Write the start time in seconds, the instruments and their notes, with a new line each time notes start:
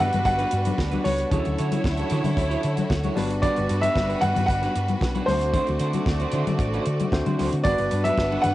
Already playing: tine electric piano G3 B3 D4 F#4 B4, violin section G3 F#4 B4, string section G3 D4 F#4 B4
0.00 fingered electric bass G2, clean electric guitar B4, grand piano F#5, low conga
0.12 fingered electric bass G2, muted clean electric guitar stroke, closed hi-hat, high conga, low conga
0.25 fingered electric bass G1, grand piano F#5, muted clean electric guitar stroke, kick, closed hi-hat, muted conga
0.39 clean electric guitar D4 F#4 B4, closed hi-hat, muted conga
0.51 fingered electric bass G2, muted clean electric guitar stroke, closed hi-hat
0.65 muted clean electric guitar stroke, closed hi-hat, high conga
0.78 fingered electric bass D2, muted clean electric guitar stroke, kick, snare
0.92 clean electric guitar D4 F#4 B4, closed hi-hat, muted conga, high conga
1.04 fingered electric bass C#2, grand piano C#5, muted clean electric guitar stroke, snare, open hi-hat, high conga
1.19 muted clean electric guitar stroke, closed hi-hat
1.30 fingered electric bass D2, string section D3 E4 C#5, tine electric piano F#3 C#4 D4 E4 G#4, clean electric guitar E4 F#4 C#5, violin section E4 A4, kick, closed hi-hat, muted conga, low conga
1.40 tine electric piano A4
1.45 fingered electric bass D2, closed hi-hat, muted conga
1.58 fingered electric bass D3, clean electric guitar E4 F#4 C#5, closed hi-hat
1.72 clean electric guitar E4 F#4 C#5, closed hi-hat, high conga
1.84 fingered electric bass D2, muted clean electric guitar stroke, kick, snare, muted conga
1.97 clean electric guitar E4 F#4 C#5, closed hi-hat, muted conga
2.10 fingered electric bass D3, clean electric guitar E4 F#4 C#5, closed hi-hat, low conga
2.24 fingered electric bass D3, muted clean electric guitar stroke, closed hi-hat, high conga, low conga
2.37 fingered electric bass D2, muted clean electric guitar stroke, kick, closed hi-hat, muted conga
2.50 clean electric guitar E4 F#4 C#5, closed hi-hat
2.63 fingered electric bass D3, muted clean electric guitar stroke, closed hi-hat
2.77 muted clean electric guitar stroke, closed hi-hat, high conga
2.90 fingered electric bass D2, muted clean electric guitar stroke, kick, snare, muted conga
3.04 clean electric guitar E4 F#4 C#5, closed hi-hat, muted conga, high conga
3.15 fingered electric bass G1, tine electric piano G3 B3 D4 F#4 B4, string section G3 D4 B4, violin section G3 F#4 B4, clean electric guitar D4 F#4 B4, snare, open hi-hat, high conga
3.30 muted clean electric guitar stroke, closed hi-hat
3.42 clean electric guitar D4 F#4 B4, grand piano D5, kick, closed hi-hat, low conga
3.56 fingered electric bass G1, muted clean electric guitar stroke, closed hi-hat, muted conga
3.69 fingered electric bass G2, muted clean electric guitar stroke, closed hi-hat
3.81 clean electric guitar D4 F#4 B4, grand piano E5, closed hi-hat, high conga
3.96 fingered electric bass G1, muted clean electric guitar stroke, kick, snare, muted conga
4.09 clean electric guitar D4 F#4 B4, closed hi-hat
4.21 fingered electric bass G2, clean electric guitar D4 F#4 B4, grand piano F#5, closed hi-hat, low conga
4.36 fingered electric bass G2, muted clean electric guitar stroke, closed hi-hat, high conga, low conga
4.46 fingered electric bass G1, grand piano F#5, muted clean electric guitar stroke, kick, closed hi-hat
4.62 clean electric guitar D4 F#4 B4, closed hi-hat, muted conga
4.75 fingered electric bass G2, muted clean electric guitar stroke, closed hi-hat
4.88 muted clean electric guitar stroke, closed hi-hat, high conga
5.01 fingered electric bass B1, muted clean electric guitar stroke, kick, snare, muted conga
5.15 clean electric guitar D4 F#4 B4, closed hi-hat, muted conga, high conga
5.26 fingered electric bass D2, string section D3 A3 C4, tine electric piano A3 C4 D4 F#4 C5, violin section A3 F#4 D5, grand piano C5, muted clean electric guitar stroke, snare, open hi-hat, high conga
5.41 muted clean electric guitar stroke, closed hi-hat
5.53 clean electric guitar D4 F#4 C5, kick, closed hi-hat, low conga
5.67 fingered electric bass D2, closed hi-hat, muted conga
5.80 fingered electric bass D3, clean electric guitar D4 F#4 C5, closed hi-hat
5.93 clean electric guitar D4 F#4 C5, closed hi-hat, high conga
6.06 fingered electric bass D2, kick, snare
6.20 clean electric guitar D4 F#4 C5, closed hi-hat, muted conga
6.32 fingered electric bass D3, clean electric guitar D4 F#4 C5, closed hi-hat, low conga
6.46 fingered electric bass D3, muted clean electric guitar stroke, closed hi-hat, high conga, low conga
6.59 fingered electric bass A1, muted clean electric guitar stroke, kick, closed hi-hat
6.73 clean electric guitar D4 F#4 C5, closed hi-hat
6.86 fingered electric bass D3, muted clean electric guitar stroke, closed hi-hat
7.00 muted clean electric guitar stroke, closed hi-hat, high conga
7.12 fingered electric bass D2, tine electric piano A3 C4 D4 F#4 C5, muted clean electric guitar stroke, kick, snare, muted conga
7.26 fingered electric bass D3, clean electric guitar D4 F#4 C5, closed hi-hat, muted conga, high conga
7.38 fingered electric bass D2, clean electric guitar D4 F#4 C5, snare, open hi-hat, high conga
7.52 fingered electric bass D3, muted clean electric guitar stroke, closed hi-hat
7.62 fingered electric bass G1, tine electric piano G3 B3 D4 F#4 A#4, string section G3 D4 B4 F#5, clean electric guitar D4 F#4 B4, violin section D4 B4 F#5, grand piano D5, kick, closed hi-hat, muted conga, low conga
7.72 tine electric piano B4
7.78 fingered electric bass G1, muted clean electric guitar stroke, closed hi-hat, muted conga
7.91 fingered electric bass G2, muted clean electric guitar stroke, closed hi-hat
8.04 clean electric guitar D4 F#4 B4, grand piano E5, closed hi-hat, high conga
8.17 fingered electric bass G1, muted clean electric guitar stroke, kick, snare
8.31 clean electric guitar D4 F#4 B4, muted conga
8.42 fingered electric bass G2, clean electric guitar D4 F#4 B4, grand piano F#5, closed hi-hat, low conga